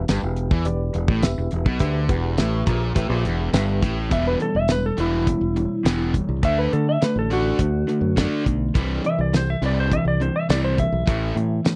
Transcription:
0.08 fingered electric bass G1, overdriven electric guitar G2, reed electric piano G4 B4 G5, snare, closed hi-hat, tambourine
0.23 fingered electric bass E1, overdriven electric guitar E2
0.36 closed hi-hat
0.51 fingered electric bass E2, overdriven electric guitar E3, kick
0.65 fingered electric bass E1, overdriven electric guitar E2, reed electric piano G4 B4 D5, closed hi-hat
0.94 fingered electric bass E1, overdriven electric guitar E2, closed hi-hat
1.08 fingered electric bass A1, overdriven electric guitar A2, kick
1.23 fingered electric bass E1, overdriven electric guitar E2, reed electric piano G4 B4 E5, snare, closed hi-hat, tambourine
1.38 fingered electric bass E1, overdriven electric guitar E2
1.51 fingered electric bass E1, overdriven electric guitar E2, closed hi-hat
1.66 fingered electric bass B1, overdriven electric guitar B2, kick
1.79 fingered electric bass D2, overdriven electric guitar D3, reed electric piano G4 B4 E5, kick, closed hi-hat
2.09 fingered electric bass E1, overdriven electric guitar E2, reed electric piano G4 B4 F#5, kick, closed hi-hat
2.37 fingered electric bass A1, overdriven electric guitar A2, reed electric piano G4 B4 E5, snare, closed hi-hat, tambourine
2.66 fingered electric bass A#1, overdriven electric guitar A#2, kick, closed hi-hat
2.95 fingered electric bass A1, overdriven electric guitar A2, reed electric piano G4 B4 E5, kick, closed hi-hat
3.09 fingered electric bass A#1, overdriven electric guitar A#2
3.24 fingered electric bass E1, overdriven electric guitar E2, closed hi-hat
3.53 fingered electric bass G1, overdriven electric guitar G2, reed electric piano G4 B4 E5, snare, closed hi-hat, tambourine
3.82 fingered electric bass A1, overdriven electric guitar A2, kick, closed hi-hat
4.10 fingered electric bass E1, overdriven electric guitar E2 B2 E3 G3 B3, electric slide guitar E5, kick, closed hi-hat
4.28 electric slide guitar B4
4.40 overdriven electric guitar E2 B2 E3 G3, electric slide guitar A4, closed hi-hat
4.55 fingered electric bass E1, electric slide guitar E5
4.68 overdriven electric guitar E2 B2 E3 G3, electric slide guitar B4, snare, closed hi-hat, tambourine
4.86 electric slide guitar A4
4.97 fingered electric bass E1, overdriven electric guitar E2 B2 E3 G3 B3, electric slide guitar E4, closed hi-hat
5.27 overdriven electric guitar E2 B2 E3 G3, kick, closed hi-hat
5.41 fingered electric bass E1
5.56 overdriven electric guitar E2 B2 E3 G3, closed hi-hat
5.83 fingered electric bass E1, overdriven electric guitar E2 B2 E3 G3 B3, snare, closed hi-hat, tambourine
6.14 overdriven electric guitar E2 B2 E3 G3, kick, closed hi-hat
6.29 fingered electric bass C2
6.43 fingered electric bass D2, overdriven electric guitar D3 A3 D4, electric slide guitar E5, kick, closed hi-hat
6.58 electric slide guitar B4
6.72 overdriven electric guitar D3 A3, fingered electric bass D3, electric slide guitar A4, closed hi-hat
6.89 electric slide guitar E5
7.02 overdriven electric guitar D3 A3, electric slide guitar B4, snare, closed hi-hat, tambourine
7.16 fingered electric bass A1, electric slide guitar A4
7.30 overdriven electric guitar D3 A3 D4, electric slide guitar F#4, closed hi-hat
7.59 fingered electric bass D2, overdriven electric guitar D3 A3, kick, closed hi-hat
7.89 overdriven electric guitar D3 A3, closed hi-hat
8.01 fingered electric bass F#2
8.17 overdriven electric guitar D3 A3 D4, kick, snare, closed hi-hat, tambourine
8.46 fingered electric bass B1, overdriven electric guitar D3 A3, kick, closed hi-hat
8.75 fingered electric bass C2, overdriven electric guitar C3 E3 G3, kick, closed hi-hat
9.04 overdriven electric guitar C3 E3, electric slide guitar E5, closed hi-hat
9.19 fingered electric bass C2, electric slide guitar D5
9.34 overdriven electric guitar C3 E3, electric slide guitar C5, snare, closed hi-hat, tambourine
9.50 electric slide guitar E5
9.62 fingered electric bass C2, overdriven electric guitar C3 E3 G3, closed hi-hat
9.66 electric slide guitar D5
9.80 electric slide guitar C5
9.91 overdriven electric guitar C3 E3, electric slide guitar E5, kick, closed hi-hat
10.05 fingered electric bass C2, electric slide guitar D5
10.20 overdriven electric guitar C3 E3, electric slide guitar C5, closed hi-hat
10.36 electric slide guitar E5
10.49 fingered electric bass C2, overdriven electric guitar C3 E3 G3, electric slide guitar D5, snare, closed hi-hat, tambourine
10.65 electric slide guitar C5
10.77 overdriven electric guitar C3 E3, electric slide guitar E5, kick, closed hi-hat
10.92 fingered electric bass B1
11.06 fingered electric bass A1, overdriven electric guitar A2 E3 A3, kick, closed hi-hat
11.35 overdriven electric guitar A2 E3, fingered electric bass A2, closed hi-hat
11.65 overdriven electric guitar A2 E3, snare, closed hi-hat, tambourine

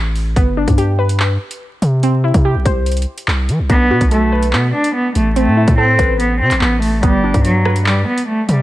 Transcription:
Already playing: 808-style bass A1, synth pluck A4 B4
0.15 open hi-hat
0.36 808-style bass G1, synth pluck B3, kick, closed hi-hat
0.57 synth pluck D4
0.68 808-style bass G2, kick, closed hi-hat
0.78 synth pluck G4, closed hi-hat
0.99 synth pluck B4
1.09 closed hi-hat
1.20 clap
1.51 closed hi-hat
1.82 808-style bass C3, closed hi-hat
2.03 synth pluck C4, closed hi-hat
2.24 synth pluck E4
2.34 808-style bass C3, kick, closed hi-hat
2.45 synth pluck G4
2.55 808-style bass B1
2.65 808-style bass C2, synth pluck C5, kick, closed hi-hat
2.86 closed hi-hat
2.92 closed hi-hat
2.97 closed hi-hat
3.02 closed hi-hat
3.18 closed hi-hat
3.28 808-style bass C2, clap
3.49 808-style bass E3, closed hi-hat
3.59 808-style bass C2
3.69 808-style bass B1, cello B3, synth pluck D4, kick, closed hi-hat
3.90 808-style bass B2, synth pluck F#4
4.01 808-style bass B1, kick, closed hi-hat
4.11 cello A3, synth pluck A4, closed hi-hat
4.32 synth pluck B4
4.42 closed hi-hat
4.53 808-style bass B2, cello B3, clap
4.74 cello D4
4.84 closed hi-hat
4.95 cello B3
5.15 808-style bass A1, cello A3, closed hi-hat
5.36 cello A3, synth pluck C4, closed hi-hat
5.47 808-style bass A2
5.57 synth pluck E4
5.68 808-style bass A2, kick, closed hi-hat
5.78 cello C4, synth pluck A4
5.99 808-style bass A1, synth pluck B4, kick, closed hi-hat
6.20 cello B3, closed hi-hat
6.41 808-style bass C3, cello C4
6.51 808-style bass A1, clap, closed hi-hat
6.61 808-style bass A1, cello B3, clap
6.82 cello A3, open hi-hat
7.03 808-style bass G1, cello G3, synth pluck B3, kick, closed hi-hat
7.24 synth pluck D4
7.34 808-style bass G2, kick, closed hi-hat
7.45 cello F#3, closed hi-hat
7.65 synth pluck B4, cross-stick
7.76 closed hi-hat
7.86 cello G3, clap
8.07 cello B3
8.18 closed hi-hat
8.28 cello A3
8.49 808-style bass C3, cello G3, closed hi-hat

